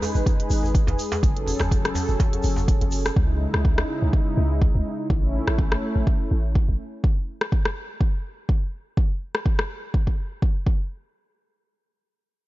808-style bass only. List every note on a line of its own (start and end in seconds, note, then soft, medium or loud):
0.15 0.22 G#1 medium
0.50 0.81 G#1 loud
0.88 0.95 G#1 medium
1.23 1.53 F#1 loud
1.60 1.90 F#1 medium
2.09 2.16 F#1 medium
2.44 2.74 F#1 loud
2.81 3.11 F#1 medium
3.16 3.47 C#2 loud
3.54 3.83 C#2 medium
4.02 4.10 C#2 medium
4.37 4.68 C#2 loud
4.75 4.82 C#2 medium
5.10 5.40 A1 loud
5.48 5.77 A1 medium
5.96 6.03 A1 medium
6.31 6.61 A1 loud
6.69 6.76 A1 medium